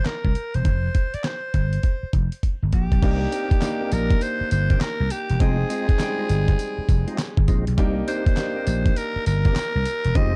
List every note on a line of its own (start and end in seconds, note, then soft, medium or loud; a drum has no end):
0.06 0.56 A#4 medium
0.06 muted slap bass stroke soft
0.06 snare loud
0.06 clap medium
0.06 closed hi-hat medium
0.25 0.33 C2 medium
0.25 kick medium
0.35 closed hi-hat medium
0.54 0.63 E1 medium
0.54 1.16 C5 loud
0.54 closed hi-hat soft
0.65 0.87 F1 loud
0.65 kick loud
0.65 closed hi-hat medium
0.95 kick medium
0.95 closed hi-hat medium
1.14 1.26 D5 medium
1.14 muted slap bass stroke soft
1.14 closed hi-hat medium
1.24 2.14 C5 medium
1.24 snare loud
1.24 clap medium
1.24 closed hi-hat medium
1.54 1.77 G1 medium
1.54 kick medium
1.54 closed hi-hat medium
1.73 closed hi-hat medium
1.83 kick medium
1.83 closed hi-hat medium
2.03 muted slap bass stroke soft
2.13 2.28 F1 medium
2.13 kick medium
2.13 closed hi-hat medium
2.32 closed hi-hat soft
2.43 kick medium
2.43 closed hi-hat medium
2.62 2.70 G1 medium
2.73 2.87 A#1 medium
2.73 3.94 G4 medium
2.73 kick medium
2.73 closed hi-hat medium
2.92 3.00 B1 loud
2.92 kick medium
2.92 closed hi-hat soft
3.02 3.25 C2 loud
3.02 3.47 A#3 medium
3.02 3.20 A#3 medium
3.02 3.20 C4 medium
3.02 3.47 D4 medium
3.02 3.20 D#4 medium
3.02 3.47 D#4 medium
3.02 3.20 G4 loud
3.02 3.47 G4 medium
3.02 kick loud
3.02 closed hi-hat medium
3.02 crash loud
3.32 3.49 A#3 medium
3.32 3.49 C4 medium
3.32 3.49 D#4 medium
3.32 3.50 G4 medium
3.32 closed hi-hat medium
3.32 tambourine medium
3.51 muted slap bass stroke soft
3.51 kick loud
3.51 closed hi-hat medium
3.61 4.46 A#3 medium
3.61 4.46 D4 medium
3.61 4.47 D#4 medium
3.61 4.47 G4 loud
3.61 snare loud
3.61 clap medium
3.61 closed hi-hat medium
3.61 tambourine loud
3.81 3.90 A#3 medium
3.81 3.91 C4 medium
3.81 3.91 D#4 medium
3.81 3.91 G4 medium
3.92 4.14 A#1 loud
3.92 4.24 A#4 loud
3.92 closed hi-hat medium
3.92 tambourine medium
4.11 kick loud
4.11 closed hi-hat medium
4.21 4.51 C5 loud
4.21 closed hi-hat medium
4.21 tambourine medium
4.41 muted slap bass stroke medium
4.51 4.74 G1 medium
4.51 4.83 C5 loud
4.51 closed hi-hat medium
4.51 tambourine medium
4.70 4.80 A#3 medium
4.70 4.80 C4 medium
4.70 4.80 D#4 medium
4.70 4.80 G4 medium
4.70 kick medium
4.70 closed hi-hat medium
4.81 5.13 A#4 loud
4.81 muted slap bass stroke soft
4.81 snare loud
4.81 clap loud
4.81 closed hi-hat medium
4.81 tambourine medium
5.00 5.08 C2 loud
5.10 5.42 G4 medium
5.10 closed hi-hat medium
5.10 tambourine medium
5.30 5.38 E1 medium
5.30 closed hi-hat soft
5.40 5.63 F1 loud
5.40 5.84 G#3 medium
5.40 5.57 G#3 medium
5.40 5.85 C4 medium
5.40 5.57 C4 medium
5.40 5.57 D#4 medium
5.40 5.85 D#4 medium
5.40 5.58 F4 loud
5.40 7.48 G#4 loud
5.40 5.85 G5 medium
5.40 kick loud
5.40 closed hi-hat medium
5.70 5.87 G#3 medium
5.70 5.87 C4 medium
5.70 5.87 D#4 medium
5.70 5.87 F4 medium
5.70 closed hi-hat medium
5.70 tambourine medium
5.89 muted slap bass stroke soft
5.89 kick loud
5.89 closed hi-hat medium
5.99 6.08 G3 medium
5.99 6.84 C4 medium
5.99 6.84 D#4 medium
5.99 6.84 G5 medium
5.99 snare loud
5.99 clap medium
5.99 closed hi-hat medium
5.99 tambourine loud
6.06 6.87 G#3 medium
6.18 6.28 G#3 medium
6.18 6.28 C4 medium
6.18 6.28 D#4 medium
6.18 6.29 F4 medium
6.29 6.52 G1 medium
6.29 closed hi-hat medium
6.29 tambourine medium
6.48 kick medium
6.48 closed hi-hat medium
6.59 closed hi-hat medium
6.59 tambourine medium
6.78 muted slap bass stroke soft
6.89 7.03 F1 medium
6.89 kick loud
6.89 closed hi-hat medium
6.89 tambourine medium
7.07 7.17 G#3 medium
7.07 7.17 C4 medium
7.07 7.17 D#4 medium
7.07 7.17 F4 medium
7.07 closed hi-hat soft
7.18 snare loud
7.18 clap medium
7.18 closed hi-hat medium
7.18 tambourine medium
7.37 7.46 G1 loud
7.37 kick medium
7.48 7.63 A#1 medium
7.48 7.65 G#3 medium
7.48 7.65 C4 medium
7.48 7.65 D#4 medium
7.48 7.65 F4 medium
7.48 kick loud
7.48 closed hi-hat medium
7.48 tambourine medium
7.67 7.75 B1 loud
7.67 closed hi-hat medium
7.78 8.00 C2 loud
7.78 8.22 A#3 loud
7.78 7.95 A#3 medium
7.78 7.95 C4 medium
7.78 8.22 D4 medium
7.78 7.95 D#4 medium
7.78 8.23 D#4 medium
7.78 7.95 G4 loud
7.78 8.23 G4 loud
7.78 kick loud
7.78 closed hi-hat medium
8.07 8.25 A#3 medium
8.07 8.25 C4 medium
8.07 8.25 D#4 medium
8.07 8.25 G4 medium
8.07 8.99 C5 loud
8.07 closed hi-hat medium
8.07 tambourine medium
8.26 muted slap bass stroke medium
8.26 kick loud
8.26 closed hi-hat medium
8.37 9.21 A#3 medium
8.37 9.22 D4 medium
8.37 9.22 D#4 medium
8.37 9.22 G4 medium
8.37 snare loud
8.37 clap medium
8.37 closed hi-hat medium
8.37 tambourine loud
8.56 8.66 A#3 medium
8.56 8.66 C4 medium
8.56 8.66 D#4 medium
8.56 8.66 G4 medium
8.67 8.89 A#1 medium
8.67 closed hi-hat medium
8.67 tambourine medium
8.86 kick medium
8.86 closed hi-hat medium
8.96 9.26 A#4 loud
8.96 closed hi-hat medium
8.96 tambourine medium
9.16 muted slap bass stroke soft
9.26 9.49 G1 loud
9.26 10.18 A#4 loud
9.26 closed hi-hat medium
9.26 tambourine medium
9.45 9.55 A#3 medium
9.45 9.55 C4 medium
9.45 9.55 D#4 medium
9.45 9.55 G4 medium
9.45 kick medium
9.45 closed hi-hat soft
9.56 muted slap bass stroke soft
9.56 snare loud
9.56 clap loud
9.56 closed hi-hat medium
9.56 tambourine loud
9.75 9.83 C2 medium
9.85 closed hi-hat medium
9.85 tambourine medium
10.04 10.13 E1 medium
10.04 closed hi-hat soft
10.15 10.36 F1 loud
10.15 10.36 G#3 medium
10.15 10.33 G#3 loud
10.15 10.33 C4 medium
10.15 10.36 C4 medium
10.15 10.33 D#4 medium
10.15 10.36 D#4 medium
10.15 10.33 F4 loud
10.15 10.36 G4 medium
10.15 10.36 D#5 loud
10.15 kick loud
10.15 closed hi-hat medium